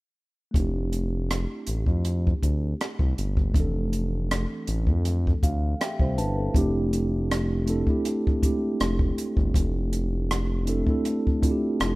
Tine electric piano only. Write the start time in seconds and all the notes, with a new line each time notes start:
0.51 A3 C4
0.55 D4 E4
0.60 G4
3.51 A3 C4
3.55 E3 D4
3.60 A4
5.43 F5
5.81 G4 E5 G5
6.01 E4 C5
6.18 D4 B4 A5
6.38 C4 A4
6.53 A3 C4 D4 E4
6.58 G4
7.66 A3 C4 D4 E4
7.70 A4
7.86 A3 C4 D4 E4
7.90 G4
8.41 G#3 C4 D4 E4
8.45 A3 G4
10.65 A3 C4 D4 E4
10.69 A4
10.86 A3 C4 D4 E4
10.90 A4
11.40 A3 C4 D4 E4
11.45 F4
11.51 G4